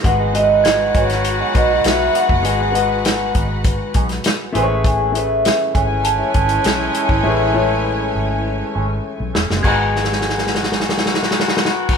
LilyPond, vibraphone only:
\new Staff \with { instrumentName = "Vibraphone" } { \time 4/4 \key gis \phrygian \tempo 4 = 100 fis''8 dis''4 cis''4 dis''8 r8 fis''8~ | fis''4. r2 r8 | gis''8 e''4 gis''8 a''2~ | a''2. r4 |
gis''1 | }